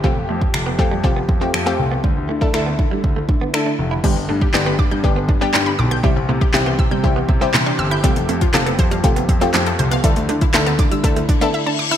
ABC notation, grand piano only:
X:1
M:4/4
L:1/16
Q:1/4=120
K:Gmix
V:1 name="Grand piano" clef=bass
F,,, F,,, F,,2 F,,,2 F,, F,, F,,,2 F,,2 F,,2 C,,2 | D,, D,, D,2 D,,2 D, D, D,,2 D,2 D,2 F,,,2 | G,,, G,,, G,,2 G,,,2 G,, G,, G,,,2 G,,2 G,,2 B,,,2 | C,, C,, C,2 C,,2 C, C, C,,2 C,2 C,2 G,,,2 |
F,,, F,,, F,,2 F,,,2 F,, F,, F,,,2 F,,2 F,,2 C,,2 | D,, D,, D,2 D,,2 D, D, D,,2 D,2 z4 |]